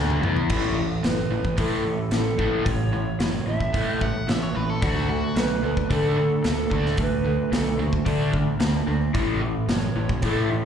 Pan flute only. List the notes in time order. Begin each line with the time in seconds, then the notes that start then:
1.05 B4
1.59 A4
2.13 A4
2.66 C#5
3.19 C#5
3.46 E5
5.37 B4
5.92 A4
6.46 A4
7.01 B4
7.54 A4
7.81 F#4
9.69 C#5
10.23 A4